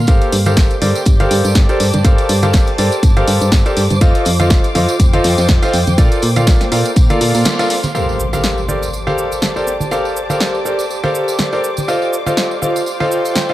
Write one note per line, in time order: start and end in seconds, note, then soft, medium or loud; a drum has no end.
0.00 1.19 A#3 medium
0.00 1.28 F5 medium
0.00 0.78 C6 medium
0.07 0.19 G1 loud
0.07 0.34 G4 loud
0.07 4.81 G4 medium
0.07 0.34 A4 medium
0.07 0.34 A#4 medium
0.07 7.94 C5 medium
0.07 0.34 C5 medium
0.07 0.34 F5 loud
0.07 7.93 D6 medium
0.07 kick loud
0.07 closed hi-hat medium
0.07 tambourine medium
0.21 closed hi-hat soft
0.21 tambourine soft
0.32 0.58 G2 medium
0.32 open hi-hat loud
0.32 tambourine medium
0.42 0.72 G4 medium
0.42 0.72 A4 medium
0.42 0.72 A#4 medium
0.42 0.72 C5 medium
0.42 4.81 D5 medium
0.42 0.72 F5 medium
0.42 closed hi-hat soft
0.42 tambourine medium
0.42 high conga medium
0.57 0.68 G1 medium
0.57 kick loud
0.57 snare loud
0.57 closed hi-hat medium
0.57 tambourine medium
0.70 closed hi-hat soft
0.70 tambourine soft
0.82 0.93 G2 loud
0.82 0.99 G4 medium
0.82 0.99 A4 medium
0.82 0.99 A#4 medium
0.82 0.99 C5 medium
0.82 0.99 D5 medium
0.82 open hi-hat loud
0.82 tambourine medium
0.82 high conga medium
0.95 closed hi-hat soft
0.95 tambourine medium
1.05 1.27 G1 loud
1.05 kick loud
1.05 closed hi-hat medium
1.05 tambourine medium
1.19 1.66 G4 loud
1.19 1.66 A4 medium
1.19 1.66 A#4 medium
1.19 1.66 C5 medium
1.19 1.66 F5 loud
1.19 4.65 A5 medium
1.19 closed hi-hat soft
1.19 tambourine soft
1.19 high conga medium
1.31 1.42 G2 loud
1.31 open hi-hat loud
1.31 tambourine medium
1.45 1.53 G2 loud
1.45 closed hi-hat soft
1.45 tambourine medium
1.55 1.67 G1 loud
1.55 kick loud
1.55 snare loud
1.55 closed hi-hat medium
1.55 tambourine medium
1.55 high conga medium
1.69 1.84 G4 medium
1.69 1.84 A4 medium
1.69 1.84 A#4 medium
1.69 1.84 C5 medium
1.69 1.84 D5 loud
1.69 closed hi-hat soft
1.69 tambourine soft
1.80 1.91 G2 medium
1.80 open hi-hat loud
1.80 tambourine medium
1.93 2.03 G2 medium
1.93 closed hi-hat soft
1.93 tambourine medium
1.93 high conga medium
2.05 2.16 G1 loud
2.05 2.31 G4 loud
2.05 2.31 A4 medium
2.05 2.31 A#4 medium
2.05 2.31 C5 medium
2.05 2.31 F5 loud
2.05 kick loud
2.05 closed hi-hat medium
2.05 tambourine medium
2.05 tambourine loud
2.18 closed hi-hat soft
2.18 tambourine soft
2.29 2.55 G2 loud
2.29 open hi-hat loud
2.29 tambourine medium
2.43 2.69 G4 medium
2.43 2.69 A4 medium
2.43 2.69 A#4 medium
2.43 2.69 C5 medium
2.43 2.69 F5 loud
2.43 closed hi-hat soft
2.43 tambourine medium
2.43 high conga medium
2.53 2.65 G1 medium
2.53 kick loud
2.53 snare loud
2.53 closed hi-hat medium
2.53 tambourine medium
2.67 snare soft
2.67 closed hi-hat soft
2.67 tambourine soft
2.78 2.89 G2 loud
2.78 2.96 G4 medium
2.78 2.96 A4 medium
2.78 2.96 A#4 medium
2.78 2.96 C5 medium
2.78 2.96 D5 medium
2.78 open hi-hat loud
2.78 tambourine medium
2.92 closed hi-hat soft
2.92 tambourine medium
3.03 3.23 G1 loud
3.03 kick loud
3.03 closed hi-hat loud
3.03 tambourine medium
3.17 3.63 G4 loud
3.17 3.63 A4 medium
3.17 3.63 A#4 medium
3.17 3.63 C5 medium
3.17 3.63 F5 loud
3.17 closed hi-hat soft
3.17 tambourine soft
3.17 high conga medium
3.28 3.39 G2 loud
3.28 open hi-hat loud
3.28 tambourine medium
3.41 3.50 G2 medium
3.41 closed hi-hat soft
3.41 tambourine medium
3.52 3.63 G1 loud
3.52 kick loud
3.52 snare loud
3.52 closed hi-hat medium
3.52 tambourine loud
3.52 tambourine medium
3.52 high conga medium
3.66 3.81 G4 medium
3.66 3.81 A4 medium
3.66 3.81 A#4 medium
3.66 3.81 C5 medium
3.66 3.81 D5 loud
3.66 closed hi-hat soft
3.66 tambourine soft
3.77 3.88 G2 medium
3.77 open hi-hat loud
3.77 tambourine medium
3.90 3.99 G2 medium
3.90 closed hi-hat soft
3.90 tambourine medium
3.90 high conga medium
4.01 4.12 F1 loud
4.01 4.28 F4 loud
4.01 6.77 F4 medium
4.01 4.28 A4 medium
4.01 4.28 C5 medium
4.01 4.28 D#5 medium
4.01 4.28 F5 loud
4.01 kick loud
4.01 closed hi-hat medium
4.01 tambourine medium
4.15 closed hi-hat soft
4.15 tambourine soft
4.25 4.52 F2 loud
4.25 open hi-hat loud
4.25 tambourine medium
4.40 4.65 F4 medium
4.40 4.65 A4 medium
4.40 4.65 C5 medium
4.40 4.65 D#5 medium
4.40 4.65 F5 loud
4.40 closed hi-hat soft
4.40 tambourine medium
4.40 high conga medium
4.48 4.62 F1 medium
4.48 6.77 C5 medium
4.48 6.77 G5 medium
4.48 kick loud
4.48 snare loud
4.48 closed hi-hat medium
4.48 tambourine medium
4.64 closed hi-hat soft
4.64 tambourine soft
4.75 4.86 F2 medium
4.75 4.92 F4 medium
4.75 4.92 A4 medium
4.75 4.92 C5 medium
4.75 4.92 D#5 medium
4.75 4.92 F5 medium
4.75 open hi-hat loud
4.75 tambourine medium
4.75 high conga medium
4.88 closed hi-hat soft
4.88 tambourine medium
5.00 5.20 F1 loud
5.00 kick loud
5.00 closed hi-hat loud
5.00 tambourine medium
5.13 5.59 F4 loud
5.13 5.59 A4 loud
5.13 5.59 C5 medium
5.13 5.59 D#5 medium
5.13 5.59 F5 loud
5.13 closed hi-hat soft
5.13 tambourine soft
5.13 high conga loud
5.24 5.35 F2 medium
5.24 snare loud
5.24 open hi-hat loud
5.24 tambourine medium
5.38 5.47 F2 loud
5.38 snare loud
5.38 closed hi-hat soft
5.38 tambourine medium
5.48 5.60 F1 loud
5.48 kick loud
5.48 snare loud
5.48 closed hi-hat medium
5.48 tambourine medium
5.48 high conga medium
5.62 5.78 F4 medium
5.62 5.78 A4 medium
5.62 5.78 C5 medium
5.62 5.78 D#5 medium
5.62 5.78 F5 loud
5.62 snare loud
5.62 closed hi-hat soft
5.62 tambourine medium
5.62 tambourine soft
5.73 5.85 F2 medium
5.73 open hi-hat loud
5.73 tambourine medium
5.87 5.96 F2 medium
5.87 closed hi-hat soft
5.87 tambourine medium
5.87 high conga medium
5.98 6.09 A#1 loud
5.98 8.66 A#3 medium
5.98 6.24 F4 loud
5.98 6.24 A4 medium
5.98 6.24 A#4 medium
5.98 6.24 D5 loud
5.98 6.24 F5 loud
5.98 kick loud
5.98 closed hi-hat loud
5.98 tambourine loud
5.98 tambourine medium
6.12 closed hi-hat soft
6.12 tambourine soft
6.22 6.49 A#2 loud
6.22 open hi-hat loud
6.22 tambourine medium
6.36 6.62 F4 medium
6.36 6.62 A4 medium
6.36 6.62 A#4 medium
6.36 6.62 D5 medium
6.36 6.62 F5 loud
6.36 closed hi-hat soft
6.36 tambourine medium
6.36 high conga medium
6.47 6.58 A#1 medium
6.47 kick loud
6.47 snare loud
6.47 closed hi-hat loud
6.47 tambourine medium
6.61 9.47 F5 medium
6.61 snare soft
6.61 closed hi-hat soft
6.61 tambourine soft
6.72 6.83 A#2 loud
6.72 6.89 F4 medium
6.72 6.89 A4 medium
6.72 6.89 A#4 medium
6.72 6.89 D5 medium
6.72 6.89 F5 medium
6.72 open hi-hat loud
6.72 tambourine medium
6.85 9.53 C6 medium
6.85 closed hi-hat soft
6.85 tambourine medium
6.96 7.07 A#1 medium
6.96 kick loud
6.96 closed hi-hat loud
6.96 tambourine medium
7.10 7.56 F4 loud
7.10 7.56 A4 medium
7.10 7.56 A#4 medium
7.10 7.56 D5 medium
7.10 7.56 F5 loud
7.10 closed hi-hat soft
7.10 tambourine soft
7.10 high conga medium
7.21 7.32 A#2 loud
7.21 open hi-hat loud
7.21 tambourine medium
7.35 7.43 A#2 loud
7.35 open hi-hat medium
7.35 tambourine medium
7.45 snare loud
7.45 closed hi-hat loud
7.45 tambourine medium
7.45 high conga medium
7.59 7.75 F4 medium
7.59 7.75 A4 medium
7.59 7.75 A#4 medium
7.59 7.75 D5 medium
7.59 7.75 F5 loud
7.59 snare loud
7.59 closed hi-hat soft
7.59 tambourine soft
7.59 tambourine medium
7.70 snare loud
7.70 open hi-hat loud
7.70 tambourine medium
7.83 snare loud
7.83 closed hi-hat soft
7.83 tambourine medium
7.83 high conga loud
7.95 12.67 G4 medium
7.95 8.21 G4 medium
7.95 8.21 A4 medium
7.95 8.21 A#4 medium
7.95 8.21 C5 medium
7.95 13.54 C5 medium
7.95 8.21 F5 loud
7.95 13.54 D6 medium
7.95 tambourine medium
7.95 impact medium
7.95 shaker soft
8.09 tambourine soft
8.20 shaker medium
8.33 8.59 G4 medium
8.33 8.59 A4 medium
8.33 8.59 A#4 medium
8.33 8.59 C5 medium
8.33 8.59 F5 loud
8.33 tambourine medium
8.33 high conga medium
8.33 shaker soft
8.44 snare loud
8.44 tambourine medium
8.44 shaker soft
8.50 12.67 D5 medium
8.58 tambourine soft
8.68 8.86 G4 medium
8.68 8.86 A4 medium
8.68 8.86 A#4 medium
8.68 8.86 C5 medium
8.68 8.86 D5 medium
8.68 12.64 A5 medium
8.68 tambourine medium
8.68 high conga medium
8.68 shaker medium
8.83 tambourine medium
8.83 shaker soft
8.93 tambourine medium
8.93 shaker soft
9.07 9.53 G4 medium
9.07 9.53 A4 medium
9.07 9.53 A#4 medium
9.07 9.53 C5 medium
9.07 9.53 F5 loud
9.07 tambourine soft
9.07 high conga medium
9.17 tambourine medium
9.17 shaker medium
9.32 tambourine medium
9.32 shaker soft
9.42 snare loud
9.42 tambourine medium
9.42 high conga medium
9.42 shaker soft
9.56 9.71 G4 medium
9.56 9.71 A4 medium
9.56 9.71 A#4 medium
9.56 9.71 C5 medium
9.56 9.71 D5 medium
9.56 tambourine soft
9.67 snare loud
9.67 tambourine medium
9.67 shaker medium
9.80 tambourine medium
9.80 high conga medium
9.80 shaker soft
9.91 10.18 G4 medium
9.91 10.18 A4 medium
9.91 10.18 A#4 medium
9.91 10.18 C5 medium
9.91 10.18 F5 loud
9.91 snare medium
9.91 tambourine medium
9.91 shaker soft
10.05 tambourine soft
10.15 tambourine medium
10.15 shaker medium
10.29 10.56 G4 medium
10.29 10.56 A4 medium
10.29 10.56 A#4 medium
10.29 10.56 C5 medium
10.29 10.56 F5 medium
10.29 tambourine medium
10.29 high conga medium
10.29 shaker soft
10.40 snare loud
10.40 tambourine medium
10.40 shaker soft
10.55 snare soft
10.55 tambourine soft
10.65 10.82 G4 medium
10.65 10.82 A4 medium
10.65 10.82 A#4 medium
10.65 10.82 C5 medium
10.65 10.82 D5 medium
10.65 tambourine medium
10.65 shaker medium
10.79 tambourine medium
10.79 shaker soft
10.89 tambourine medium
10.89 shaker soft
11.03 11.49 G4 medium
11.03 11.49 A4 medium
11.03 11.49 A#4 medium
11.03 11.49 C5 medium
11.03 11.49 F5 loud
11.03 tambourine soft
11.03 high conga loud
11.14 tambourine medium
11.14 shaker medium
11.28 tambourine medium
11.28 shaker soft
11.39 snare loud
11.39 tambourine medium
11.39 high conga medium
11.39 shaker soft
11.52 11.68 G4 medium
11.52 11.68 A4 medium
11.52 11.68 A#4 medium
11.52 11.68 C5 medium
11.52 11.68 D5 medium
11.52 tambourine soft
11.63 tambourine medium
11.63 shaker medium
11.77 tambourine medium
11.77 high conga medium
11.77 shaker soft
11.88 12.14 F4 loud
11.88 13.54 F4 medium
11.88 12.14 A4 medium
11.88 12.14 C5 medium
11.88 12.14 D#5 medium
11.88 12.14 F5 loud
11.88 tambourine medium
11.88 shaker soft
12.02 tambourine soft
12.12 tambourine medium
12.12 shaker medium
12.26 12.52 F4 medium
12.26 12.52 A4 medium
12.26 12.52 C5 medium
12.26 12.52 D#5 medium
12.26 12.52 F5 medium
12.26 tambourine medium
12.26 high conga medium
12.26 shaker soft
12.37 13.54 C5 medium
12.37 snare loud
12.37 tambourine medium
12.37 shaker soft
12.51 tambourine soft
12.61 12.79 F4 medium
12.61 12.79 A4 medium
12.61 12.79 C5 medium
12.61 12.79 D#5 medium
12.61 12.79 F5 medium
12.61 tambourine medium
12.61 high conga medium
12.61 shaker medium
12.76 13.54 G5 medium
12.76 tambourine medium
12.76 shaker soft
12.86 tambourine medium
12.86 shaker soft
13.00 13.46 F4 loud
13.00 13.46 A4 medium
13.00 13.46 C5 medium
13.00 13.46 D#5 medium
13.00 13.46 F5 loud
13.00 tambourine soft
13.00 high conga medium
13.11 tambourine medium
13.11 shaker medium
13.25 tambourine medium
13.25 shaker soft
13.36 snare loud
13.36 tambourine medium
13.36 high conga medium
13.36 shaker soft
13.49 13.54 F4 medium
13.49 13.54 A4 medium
13.49 13.54 C5 medium
13.49 13.54 D#5 medium
13.49 13.54 F5 loud
13.49 tambourine soft